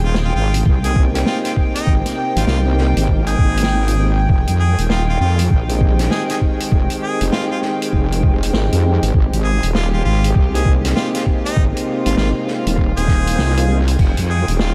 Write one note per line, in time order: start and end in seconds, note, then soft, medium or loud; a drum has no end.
0.00 0.33 D#1 loud
0.00 4.25 C3 medium
0.00 1.83 G#3 medium
0.00 9.10 G5 medium
0.05 0.17 F4 medium
0.14 snare loud
0.24 0.31 F4 medium
0.35 0.64 G#1 loud
0.35 0.57 F4 medium
0.54 closed hi-hat medium
0.66 1.24 C2 loud
0.66 kick loud
0.84 3.22 A#3 medium
0.84 3.22 C4 medium
0.84 3.22 D#4 medium
0.84 3.22 G4 loud
0.84 1.01 G#4 loud
0.84 closed hi-hat medium
0.96 kick loud
1.14 snare medium
1.14 closed hi-hat medium
1.26 1.38 F4 medium
1.26 snare loud
1.45 1.52 F4 medium
1.45 snare soft
1.45 closed hi-hat medium
1.56 kick medium
1.75 1.92 D#4 medium
1.75 closed hi-hat medium
1.87 2.03 G#1 medium
1.87 4.27 A#3 medium
1.87 kick loud
2.05 snare soft
2.05 closed hi-hat medium
2.36 2.45 G#1 loud
2.36 2.43 F4 medium
2.36 closed hi-hat medium
2.47 2.94 C2 loud
2.47 2.59 F4 medium
2.47 snare loud
2.78 snare soft
2.96 3.36 G#1 loud
2.96 closed hi-hat medium
3.08 kick medium
3.27 3.84 A#3 medium
3.27 3.84 C4 medium
3.27 3.84 D#4 medium
3.27 4.10 G#4 loud
3.27 3.84 G5 loud
3.27 closed hi-hat soft
3.38 4.27 G#1 loud
3.38 kick loud
3.57 closed hi-hat medium
3.63 snare loud
3.88 3.96 A#3 medium
3.88 3.96 C4 medium
3.88 3.96 D#4 medium
3.88 3.96 F4 medium
3.88 closed hi-hat medium
3.99 4.13 A#3 medium
3.99 4.13 C4 medium
3.99 4.13 D#4 medium
3.99 4.13 G4 loud
4.29 4.45 F1 loud
4.29 9.10 D#3 medium
4.29 13.95 G#3 medium
4.29 kick loud
4.47 4.76 F2 medium
4.47 closed hi-hat medium
4.59 4.82 G#4 medium
4.78 5.18 D#1 loud
4.78 closed hi-hat medium
4.90 5.02 F4 medium
4.90 snare loud
5.09 5.16 F4 medium
5.20 5.49 F2 loud
5.20 5.42 F4 medium
5.39 closed hi-hat medium
5.50 6.09 A#1 loud
5.50 kick loud
5.69 8.07 G#3 loud
5.69 8.07 C4 medium
5.69 8.07 D#4 medium
5.69 8.07 G4 loud
5.69 closed hi-hat medium
5.81 kick loud
5.99 snare medium
5.99 closed hi-hat medium
6.11 6.23 G#4 medium
6.11 snare loud
6.30 6.37 G#4 medium
6.30 snare soft
6.30 closed hi-hat medium
6.41 kick medium
6.60 closed hi-hat medium
6.72 6.88 F1 loud
6.72 kick loud
6.90 closed hi-hat medium
7.01 7.24 G#4 medium
7.21 7.30 F1 loud
7.21 closed hi-hat medium
7.32 7.44 F4 medium
7.32 snare loud
7.51 7.58 F4 medium
7.62 snare soft
7.82 closed hi-hat medium
7.93 8.52 F1 loud
7.93 kick medium
8.12 9.13 G#3 medium
8.12 9.13 C4 medium
8.12 9.13 D#4 medium
8.12 9.13 G4 loud
8.12 closed hi-hat medium
8.23 kick loud
8.43 closed hi-hat medium
8.53 8.69 G#1 loud
8.53 snare loud
8.72 9.00 F2 medium
8.72 closed hi-hat medium
9.03 9.12 G#1 loud
9.03 closed hi-hat medium
9.14 9.30 G#1 loud
9.14 13.95 C3 medium
9.14 11.54 G4 medium
9.14 kick loud
9.33 9.60 G#1 loud
9.33 closed hi-hat medium
9.44 9.66 G#4 medium
9.63 10.03 D#1 loud
9.63 closed hi-hat medium
9.75 9.87 F4 medium
9.75 snare loud
9.93 10.01 F4 medium
10.05 10.33 G#1 loud
10.05 10.27 F4 loud
10.24 closed hi-hat medium
10.35 10.94 C2 loud
10.35 kick loud
10.54 12.92 A#3 medium
10.54 12.92 C4 medium
10.54 12.92 D#4 medium
10.54 12.92 G4 loud
10.54 10.71 G#4 medium
10.54 closed hi-hat medium
10.65 kick loud
10.85 snare medium
10.85 closed hi-hat medium
10.95 11.08 F4 medium
10.95 snare loud
11.14 11.22 F4 medium
11.14 snare soft
11.14 closed hi-hat medium
11.26 kick medium
11.45 11.62 D#4 loud
11.45 closed hi-hat medium
11.56 11.72 G#1 loud
11.56 13.96 F4 medium
11.56 kick loud
11.77 closed hi-hat medium
12.06 12.15 G#1 loud
12.06 12.13 F4 medium
12.06 closed hi-hat medium
12.17 12.33 G#1 loud
12.17 12.29 F4 medium
12.17 snare loud
12.48 snare soft
12.66 12.94 D#1 loud
12.66 closed hi-hat medium
12.78 kick medium
12.78 swell medium
12.97 13.36 D#1 loud
12.97 13.53 A#3 medium
12.97 13.53 C4 medium
12.97 13.53 D#4 medium
12.97 13.80 G#4 loud
12.97 13.53 G5 loud
12.97 closed hi-hat soft
13.08 kick loud
13.08 snare soft
13.27 closed hi-hat medium
13.38 13.97 C2 loud
13.38 snare loud
13.57 13.66 A#3 medium
13.57 13.66 C4 medium
13.57 13.66 D#4 medium
13.57 13.66 F4 medium
13.57 closed hi-hat medium
13.68 13.82 A#3 medium
13.68 13.82 C4 medium
13.68 13.82 D#4 medium
13.68 13.82 G4 loud
13.88 closed hi-hat medium
13.99 14.15 F1 loud
13.99 14.74 D#3 medium
13.99 14.74 G#3 medium
13.99 14.74 G5 medium
13.99 kick loud
13.99 crash medium
14.17 14.45 F2 medium
14.17 closed hi-hat medium
14.29 14.51 G#4 medium
14.48 14.74 D#1 loud
14.48 closed hi-hat medium
14.59 14.72 F4 medium
14.59 snare loud